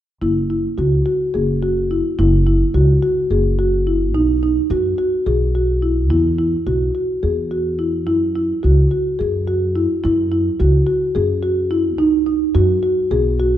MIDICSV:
0, 0, Header, 1, 3, 480
1, 0, Start_track
1, 0, Tempo, 560748
1, 187, Time_signature, 7, 3, 24, 8
1, 11620, End_track
2, 0, Start_track
2, 0, Title_t, "Marimba"
2, 0, Program_c, 0, 12
2, 184, Note_on_c, 0, 64, 65
2, 335, Note_off_c, 0, 64, 0
2, 429, Note_on_c, 0, 64, 52
2, 578, Note_off_c, 0, 64, 0
2, 665, Note_on_c, 0, 66, 60
2, 816, Note_off_c, 0, 66, 0
2, 906, Note_on_c, 0, 66, 59
2, 1058, Note_off_c, 0, 66, 0
2, 1147, Note_on_c, 0, 68, 57
2, 1299, Note_off_c, 0, 68, 0
2, 1390, Note_on_c, 0, 66, 57
2, 1540, Note_off_c, 0, 66, 0
2, 1634, Note_on_c, 0, 64, 58
2, 1782, Note_off_c, 0, 64, 0
2, 1873, Note_on_c, 0, 64, 72
2, 2021, Note_off_c, 0, 64, 0
2, 2111, Note_on_c, 0, 64, 62
2, 2259, Note_off_c, 0, 64, 0
2, 2349, Note_on_c, 0, 66, 66
2, 2498, Note_off_c, 0, 66, 0
2, 2589, Note_on_c, 0, 66, 63
2, 2738, Note_off_c, 0, 66, 0
2, 2832, Note_on_c, 0, 68, 65
2, 2980, Note_off_c, 0, 68, 0
2, 3070, Note_on_c, 0, 66, 63
2, 3219, Note_off_c, 0, 66, 0
2, 3312, Note_on_c, 0, 64, 55
2, 3460, Note_off_c, 0, 64, 0
2, 3548, Note_on_c, 0, 63, 72
2, 3697, Note_off_c, 0, 63, 0
2, 3792, Note_on_c, 0, 63, 60
2, 3939, Note_off_c, 0, 63, 0
2, 4031, Note_on_c, 0, 66, 64
2, 4178, Note_off_c, 0, 66, 0
2, 4266, Note_on_c, 0, 66, 60
2, 4414, Note_off_c, 0, 66, 0
2, 4505, Note_on_c, 0, 68, 63
2, 4654, Note_off_c, 0, 68, 0
2, 4751, Note_on_c, 0, 66, 57
2, 4898, Note_off_c, 0, 66, 0
2, 4985, Note_on_c, 0, 64, 55
2, 5135, Note_off_c, 0, 64, 0
2, 5225, Note_on_c, 0, 64, 71
2, 5374, Note_off_c, 0, 64, 0
2, 5466, Note_on_c, 0, 64, 58
2, 5615, Note_off_c, 0, 64, 0
2, 5707, Note_on_c, 0, 66, 58
2, 5856, Note_off_c, 0, 66, 0
2, 5948, Note_on_c, 0, 66, 53
2, 6097, Note_off_c, 0, 66, 0
2, 6188, Note_on_c, 0, 68, 59
2, 6338, Note_off_c, 0, 68, 0
2, 6429, Note_on_c, 0, 66, 57
2, 6580, Note_off_c, 0, 66, 0
2, 6667, Note_on_c, 0, 64, 54
2, 6818, Note_off_c, 0, 64, 0
2, 6906, Note_on_c, 0, 64, 70
2, 7057, Note_off_c, 0, 64, 0
2, 7151, Note_on_c, 0, 64, 56
2, 7301, Note_off_c, 0, 64, 0
2, 7388, Note_on_c, 0, 66, 59
2, 7538, Note_off_c, 0, 66, 0
2, 7629, Note_on_c, 0, 66, 55
2, 7779, Note_off_c, 0, 66, 0
2, 7866, Note_on_c, 0, 68, 60
2, 8017, Note_off_c, 0, 68, 0
2, 8110, Note_on_c, 0, 66, 60
2, 8260, Note_off_c, 0, 66, 0
2, 8351, Note_on_c, 0, 64, 61
2, 8500, Note_off_c, 0, 64, 0
2, 8591, Note_on_c, 0, 64, 72
2, 8740, Note_off_c, 0, 64, 0
2, 8830, Note_on_c, 0, 64, 61
2, 8978, Note_off_c, 0, 64, 0
2, 9071, Note_on_c, 0, 66, 65
2, 9217, Note_off_c, 0, 66, 0
2, 9303, Note_on_c, 0, 66, 60
2, 9451, Note_off_c, 0, 66, 0
2, 9544, Note_on_c, 0, 68, 64
2, 9691, Note_off_c, 0, 68, 0
2, 9782, Note_on_c, 0, 66, 65
2, 9930, Note_off_c, 0, 66, 0
2, 10022, Note_on_c, 0, 64, 63
2, 10169, Note_off_c, 0, 64, 0
2, 10259, Note_on_c, 0, 63, 79
2, 10407, Note_off_c, 0, 63, 0
2, 10499, Note_on_c, 0, 63, 60
2, 10648, Note_off_c, 0, 63, 0
2, 10740, Note_on_c, 0, 66, 72
2, 10889, Note_off_c, 0, 66, 0
2, 10982, Note_on_c, 0, 66, 63
2, 11130, Note_off_c, 0, 66, 0
2, 11223, Note_on_c, 0, 68, 66
2, 11370, Note_off_c, 0, 68, 0
2, 11468, Note_on_c, 0, 66, 63
2, 11614, Note_off_c, 0, 66, 0
2, 11620, End_track
3, 0, Start_track
3, 0, Title_t, "Upright bass"
3, 0, Program_c, 1, 32
3, 186, Note_on_c, 1, 30, 70
3, 560, Note_off_c, 1, 30, 0
3, 669, Note_on_c, 1, 37, 74
3, 856, Note_off_c, 1, 37, 0
3, 1153, Note_on_c, 1, 30, 61
3, 1709, Note_off_c, 1, 30, 0
3, 1872, Note_on_c, 1, 30, 79
3, 2242, Note_off_c, 1, 30, 0
3, 2346, Note_on_c, 1, 37, 73
3, 2534, Note_off_c, 1, 37, 0
3, 2828, Note_on_c, 1, 30, 68
3, 3552, Note_off_c, 1, 30, 0
3, 3552, Note_on_c, 1, 35, 84
3, 3921, Note_off_c, 1, 35, 0
3, 4023, Note_on_c, 1, 42, 76
3, 4210, Note_off_c, 1, 42, 0
3, 4506, Note_on_c, 1, 35, 74
3, 5224, Note_off_c, 1, 35, 0
3, 5224, Note_on_c, 1, 40, 82
3, 5596, Note_off_c, 1, 40, 0
3, 5705, Note_on_c, 1, 35, 69
3, 5892, Note_off_c, 1, 35, 0
3, 6189, Note_on_c, 1, 40, 60
3, 6911, Note_off_c, 1, 40, 0
3, 6911, Note_on_c, 1, 42, 71
3, 7283, Note_off_c, 1, 42, 0
3, 7395, Note_on_c, 1, 37, 70
3, 7580, Note_off_c, 1, 37, 0
3, 7879, Note_on_c, 1, 42, 70
3, 8432, Note_off_c, 1, 42, 0
3, 8599, Note_on_c, 1, 42, 80
3, 8965, Note_off_c, 1, 42, 0
3, 9072, Note_on_c, 1, 37, 80
3, 9255, Note_off_c, 1, 37, 0
3, 9548, Note_on_c, 1, 42, 75
3, 10258, Note_off_c, 1, 42, 0
3, 10258, Note_on_c, 1, 35, 87
3, 10629, Note_off_c, 1, 35, 0
3, 10741, Note_on_c, 1, 42, 82
3, 10926, Note_off_c, 1, 42, 0
3, 11221, Note_on_c, 1, 35, 74
3, 11620, Note_off_c, 1, 35, 0
3, 11620, End_track
0, 0, End_of_file